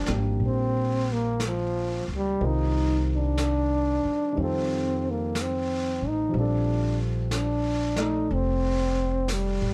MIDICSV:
0, 0, Header, 1, 6, 480
1, 0, Start_track
1, 0, Key_signature, -2, "major"
1, 0, Tempo, 996678
1, 1154, Time_signature, 4, 2, 24, 8
1, 1632, Tempo, 983607
1, 4731, End_track
2, 0, Start_track
2, 0, Title_t, "Grand piano"
2, 0, Program_c, 0, 0
2, 0, Control_c, 0, 64, 127
2, 0, Note_on_c, 0, 53, 44
2, 0, Note_on_c, 0, 55, 40
2, 0, Note_on_c, 0, 60, 41
2, 0, Note_on_c, 0, 65, 34
2, 0, Note_on_c, 0, 70, 43
2, 38, Note_off_c, 0, 55, 0
2, 38, Note_on_c, 0, 55, 37
2, 38, Note_on_c, 0, 58, 33
2, 46, Note_on_c, 0, 62, 35
2, 50, Note_on_c, 0, 67, 42
2, 1154, Note_off_c, 0, 53, 0
2, 1154, Note_off_c, 0, 55, 0
2, 1154, Note_off_c, 0, 60, 0
2, 1155, Note_off_c, 0, 65, 0
2, 1156, Note_off_c, 0, 58, 0
2, 1158, Note_off_c, 0, 70, 0
2, 1158, Note_on_c, 0, 51, 40
2, 1160, Note_off_c, 0, 62, 0
2, 1161, Control_c, 0, 64, 0
2, 1161, Note_on_c, 0, 55, 40
2, 1161, Note_on_c, 0, 60, 40
2, 1162, Note_off_c, 0, 67, 0
2, 1162, Note_on_c, 0, 65, 38
2, 1167, Note_on_c, 0, 70, 46
2, 1247, Control_c, 0, 64, 127
2, 2081, Note_off_c, 0, 51, 0
2, 2088, Note_on_c, 0, 51, 45
2, 2093, Note_off_c, 0, 55, 0
2, 2100, Note_on_c, 0, 55, 39
2, 2106, Note_off_c, 0, 60, 0
2, 2114, Note_on_c, 0, 60, 39
2, 2116, Note_off_c, 0, 65, 0
2, 2118, Note_off_c, 0, 70, 0
2, 2118, Control_c, 0, 64, 0
2, 2128, Note_on_c, 0, 65, 38
2, 2142, Note_on_c, 0, 69, 46
2, 2209, Control_c, 0, 64, 127
2, 3048, Note_on_c, 0, 53, 47
2, 3055, Note_off_c, 0, 55, 0
2, 3059, Note_off_c, 0, 51, 0
2, 3063, Note_on_c, 0, 55, 39
2, 3069, Note_off_c, 0, 60, 0
2, 3077, Control_c, 0, 64, 0
2, 3077, Note_on_c, 0, 60, 38
2, 3079, Note_off_c, 0, 65, 0
2, 3086, Note_off_c, 0, 69, 0
2, 3090, Note_on_c, 0, 65, 39
2, 3104, Note_on_c, 0, 69, 44
2, 3161, Control_c, 0, 64, 127
2, 3868, Note_on_c, 0, 57, 43
2, 3874, Note_on_c, 0, 74, 36
2, 3875, Note_off_c, 0, 69, 0
2, 3883, Note_on_c, 0, 69, 44
2, 4731, Note_off_c, 0, 53, 0
2, 4731, Note_off_c, 0, 55, 0
2, 4731, Note_off_c, 0, 57, 0
2, 4731, Note_off_c, 0, 60, 0
2, 4731, Note_off_c, 0, 65, 0
2, 4731, Note_off_c, 0, 69, 0
2, 4731, Note_off_c, 0, 74, 0
2, 4731, End_track
3, 0, Start_track
3, 0, Title_t, "Trombone"
3, 0, Program_c, 1, 57
3, 0, Note_on_c, 1, 62, 81
3, 124, Note_off_c, 1, 62, 0
3, 217, Note_on_c, 1, 60, 69
3, 542, Note_on_c, 1, 58, 64
3, 550, Note_off_c, 1, 60, 0
3, 687, Note_off_c, 1, 58, 0
3, 703, Note_on_c, 1, 53, 68
3, 993, Note_off_c, 1, 53, 0
3, 1039, Note_on_c, 1, 55, 69
3, 1184, Note_on_c, 1, 63, 75
3, 1192, Note_off_c, 1, 55, 0
3, 1491, Note_off_c, 1, 63, 0
3, 1522, Note_on_c, 1, 62, 83
3, 2133, Note_on_c, 1, 60, 68
3, 2140, Note_off_c, 1, 62, 0
3, 2471, Note_on_c, 1, 58, 64
3, 2478, Note_off_c, 1, 60, 0
3, 2622, Note_on_c, 1, 60, 78
3, 2629, Note_off_c, 1, 58, 0
3, 2947, Note_on_c, 1, 63, 68
3, 2954, Note_off_c, 1, 60, 0
3, 3087, Note_off_c, 1, 63, 0
3, 3096, Note_on_c, 1, 62, 73
3, 3387, Note_off_c, 1, 62, 0
3, 3558, Note_on_c, 1, 62, 67
3, 3883, Note_on_c, 1, 63, 70
3, 3890, Note_off_c, 1, 62, 0
3, 4046, Note_on_c, 1, 60, 75
3, 4053, Note_off_c, 1, 63, 0
3, 4523, Note_on_c, 1, 55, 68
3, 4530, Note_off_c, 1, 60, 0
3, 4731, Note_off_c, 1, 55, 0
3, 4731, End_track
4, 0, Start_track
4, 0, Title_t, "Upright bass"
4, 0, Program_c, 2, 32
4, 39, Note_on_c, 2, 32, 59
4, 184, Note_off_c, 2, 32, 0
4, 191, Note_on_c, 2, 34, 56
4, 978, Note_off_c, 2, 34, 0
4, 1003, Note_on_c, 2, 37, 51
4, 1146, Note_off_c, 2, 37, 0
4, 1160, Note_on_c, 2, 36, 67
4, 1938, Note_off_c, 2, 36, 0
4, 2112, Note_on_c, 2, 41, 65
4, 2895, Note_off_c, 2, 41, 0
4, 2915, Note_on_c, 2, 33, 47
4, 3060, Note_off_c, 2, 33, 0
4, 3071, Note_on_c, 2, 34, 65
4, 4011, Note_off_c, 2, 34, 0
4, 4032, Note_on_c, 2, 29, 67
4, 4652, Note_off_c, 2, 29, 0
4, 4672, Note_on_c, 2, 33, 59
4, 4731, Note_off_c, 2, 33, 0
4, 4731, End_track
5, 0, Start_track
5, 0, Title_t, "Muted upright bass strokes"
5, 1953, Note_on_c, 9, 29, 32
5, 2002, Note_off_c, 9, 29, 0
5, 4731, End_track
6, 0, Start_track
6, 0, Title_t, "Drums"
6, 30, Note_on_c, 9, 38, 23
6, 78, Note_off_c, 9, 38, 0
6, 190, Note_on_c, 9, 25, 28
6, 673, Note_off_c, 9, 25, 0
6, 673, Note_on_c, 9, 25, 33
6, 673, Note_on_c, 9, 38, 33
6, 673, Note_on_c, 9, 44, 41
6, 721, Note_off_c, 9, 38, 0
6, 721, Note_off_c, 9, 44, 0
6, 1153, Note_off_c, 9, 25, 0
6, 1153, Note_on_c, 9, 25, 23
6, 1626, Note_off_c, 9, 25, 0
6, 1626, Note_on_c, 9, 25, 26
6, 1626, Note_on_c, 9, 38, 35
6, 1626, Note_on_c, 9, 44, 49
6, 1674, Note_off_c, 9, 38, 0
6, 1674, Note_off_c, 9, 44, 0
6, 2103, Note_off_c, 9, 25, 0
6, 2103, Note_on_c, 9, 25, 27
6, 2590, Note_off_c, 9, 25, 0
6, 2590, Note_on_c, 9, 25, 29
6, 2590, Note_on_c, 9, 38, 33
6, 2590, Note_on_c, 9, 44, 39
6, 2638, Note_off_c, 9, 38, 0
6, 2638, Note_off_c, 9, 44, 0
6, 3071, Note_off_c, 9, 25, 0
6, 3071, Note_on_c, 9, 25, 26
6, 3546, Note_off_c, 9, 25, 0
6, 3546, Note_on_c, 9, 25, 28
6, 3546, Note_on_c, 9, 38, 37
6, 3546, Note_on_c, 9, 44, 36
6, 3595, Note_off_c, 9, 38, 0
6, 3595, Note_off_c, 9, 44, 0
6, 3864, Note_on_c, 9, 38, 26
6, 3913, Note_off_c, 9, 38, 0
6, 4024, Note_off_c, 9, 25, 0
6, 4024, Note_on_c, 9, 25, 35
6, 4508, Note_off_c, 9, 25, 0
6, 4508, Note_on_c, 9, 25, 27
6, 4508, Note_on_c, 9, 38, 33
6, 4508, Note_on_c, 9, 44, 43
6, 4557, Note_off_c, 9, 38, 0
6, 4557, Note_off_c, 9, 44, 0
6, 4731, Note_off_c, 9, 25, 0
6, 4731, End_track
0, 0, End_of_file